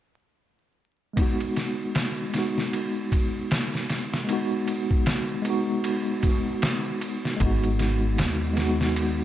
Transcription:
1.13 tine electric piano G#3 B3, kick, ride
1.18 tine electric piano D#4 F#4
1.41 ride
1.56 snare, ride
1.95 snare, ride
2.30 tine electric piano G#3 B3, ride
2.34 tine electric piano D#4, snare
2.39 tine electric piano F#4
2.58 snare
2.73 ride
3.12 kick, ride
3.51 snare, ride
3.75 snare
3.90 snare, ride
4.14 snare
4.24 tine electric piano G#3 B3
4.29 tine electric piano D#4, ride
4.33 tine electric piano F#4
4.68 ride
4.91 kick
5.06 snare, ride, shaker
5.42 tine electric piano G#3 B3, ride
5.48 tine electric piano D#4 F#4
5.84 ride
6.23 kick, ride
6.62 snare, ride, shaker
7.01 ride
7.25 snare
7.36 tine electric piano G#3 B3, kick, ride
7.41 upright bass G#1, tine electric piano D#4
7.46 tine electric piano F#4
7.64 ride
7.79 snare, ride
8.18 upright bass D#2, snare, ride, shaker
8.53 tine electric piano G#3 B3, ride
8.58 tine electric piano D#4, snare
8.62 tine electric piano F#4
8.81 snare
8.96 ride

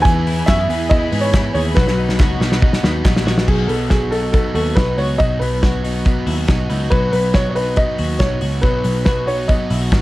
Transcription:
Already playing: clean electric guitar B3, string section B4
0.02 picked electric bass E2, overdriven electric guitar E3, string section E4 B5, upright piano G#5, kick, closed hi-hat
0.06 overdriven electric guitar B3 E4 G#4, string section G#5
0.27 clean electric guitar E4, open hi-hat
0.46 picked electric bass F#2, overdriven electric guitar E3 B3 E4 G#4, clean electric guitar F#4, upright piano E5, kick, snare, clap, closed hi-hat
0.59 clean electric guitar G#4
0.69 picked electric bass E2, overdriven electric guitar B3 E4 G#4, open hi-hat
0.89 overdriven electric guitar E3 B3 E4 G#4, upright piano D#5, kick, closed hi-hat
1.12 picked electric bass G#2, overdriven electric guitar B3 E4 G#4, open hi-hat
1.21 upright piano C#5
1.33 overdriven electric guitar E3 B3 E4 G#4, kick, snare, clap, closed hi-hat
1.54 picked electric bass D#2, clean electric guitar G#4, upright piano C#5, open hi-hat
1.75 picked electric bass B1, overdriven electric guitar B2 F#3 B3 D#4 F#4, string section D#4 F#5, upright piano B4, kick, snare
1.87 snare
1.98 clean electric guitar D#4
2.09 snare
2.19 picked electric bass C#2, overdriven electric guitar F#3 B3 D#4 F#4, kick, snare, clap
2.40 picked electric bass B1, overdriven electric guitar B3 D#4 F#4, snare
2.52 snare
2.62 overdriven electric guitar F#3 B3 D#4 F#4, kick
2.73 snare
2.83 picked electric bass D#2, overdriven electric guitar B3 D#4 F#4, snare
3.04 picked electric bass A#1, overdriven electric guitar F#3 B3 D#4 F#4, kick, snare, clap
3.16 snare
3.26 picked electric bass A#1, clean electric guitar F#4, snare
3.38 snare
3.47 picked electric bass B1, overdriven electric guitar B2 F#3 B3 D#4 F#4, upright piano G#4, kick, crash
3.68 picked electric bass B1, clean electric guitar B3, upright piano A4, open hi-hat
3.89 overdriven electric guitar F#3 B3 D#4 F#4, upright piano G#4, kick, snare, closed hi-hat
4.11 overdriven electric guitar B3 D#4 F#4, upright piano A4, open hi-hat
4.32 overdriven electric guitar F#3 B3 D#4 F#4, upright piano A4, kick, closed hi-hat
4.54 picked electric bass D#2, clean electric guitar F#4, upright piano A4, open hi-hat
4.75 picked electric bass B1, overdriven electric guitar F#3 B3 D#4 F#4, upright piano B4, kick, snare, closed hi-hat
4.98 picked electric bass C#2, overdriven electric guitar B3 D#4 F#4, upright piano C#5, open hi-hat
5.18 picked electric bass B1, overdriven electric guitar B2 F#3 B3 D#4 F#4, upright piano D#5, kick, closed hi-hat
5.39 picked electric bass B1, clean electric guitar B3, upright piano B4, open hi-hat
5.63 overdriven electric guitar F#3 B3 D#4 F#4, kick, snare, closed hi-hat
5.84 overdriven electric guitar B3 D#4 F#4, open hi-hat
6.05 overdriven electric guitar F#3 B3 D#4 F#4, kick, closed hi-hat
6.27 picked electric bass D#2, clean electric guitar E4, open hi-hat
6.37 clean electric guitar F#4
6.48 picked electric bass B1, overdriven electric guitar F#3 B3 D#4 F#4, kick, snare, closed hi-hat
6.69 picked electric bass C#2, overdriven electric guitar B3 D#4 F#4, clean electric guitar E4, open hi-hat
6.80 clean electric guitar F#4
6.90 picked electric bass B1, overdriven electric guitar B2 F#3 B3 D#4 F#4, upright piano B4, kick, closed hi-hat
7.12 picked electric bass B1, clean electric guitar B3, upright piano B4, open hi-hat
7.33 overdriven electric guitar F#3 B3 D#4 F#4, upright piano C#5, kick, snare
7.50 upright piano C#5
7.55 overdriven electric guitar B3 D#4 F#4, upright piano B4, open hi-hat
7.76 overdriven electric guitar F#3 B3 D#4 F#4, upright piano D#5, kick, closed hi-hat
7.98 picked electric bass D#2, clean electric guitar F#4, open hi-hat
8.19 picked electric bass B1, overdriven electric guitar F#3 B3 D#4 F#4, upright piano C#5, kick, snare, closed hi-hat
8.41 picked electric bass C#2, overdriven electric guitar B3 D#4 F#4, open hi-hat
8.62 picked electric bass B1, overdriven electric guitar B2 F#3 B3 D#4 F#4, upright piano B4, kick, closed hi-hat
8.84 picked electric bass B1, clean electric guitar B3, open hi-hat
9.05 overdriven electric guitar F#3 B3 D#4 F#4, upright piano B4, kick, snare, closed hi-hat
9.27 overdriven electric guitar B3 D#4 F#4, clean electric guitar C#4, upright piano C#5, open hi-hat
9.38 clean electric guitar D#4
9.48 overdriven electric guitar F#3 B3 D#4 F#4, upright piano D#5, kick, closed hi-hat
9.70 picked electric bass B1, clean electric guitar E4, open hi-hat
9.82 clean electric guitar F#4
9.91 picked electric bass G#1, overdriven electric guitar F#3 B3 D#4 F#4, kick, snare, closed hi-hat

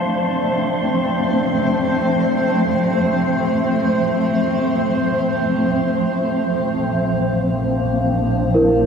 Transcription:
Already playing: ambient pad F3 A3 C4 D4 C5 D5 A5, synth texture C5 C6, celesta D5 E5 F5 A5
6.57 double bass section A#1, ambient pad A#3
7.43 ambient pad D4
7.77 ambient pad D5 A5
8.54 celesta E4 A#4

